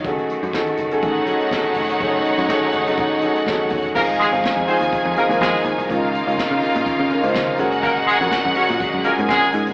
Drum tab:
CC |----------------|----------------|x---------------|----------------|
HH |xxxx-xxxxxxx-xox|xxxx--xxxxxx--ox|--xx--oxx-xx--xx|x-xx-xoxxxxx--xx|
SD |----o-------o---|----o-------o---|----o-------oo--|----o-------o---|
BD |o---o---o---o---|o---o---o---o-o-|o---o---o---o---|o---o---o---o---|

CC |----------------|
HH |xxxx--oxx-xx-xxx|
SD |----o-------oo--|
BD |o---o---o---o---|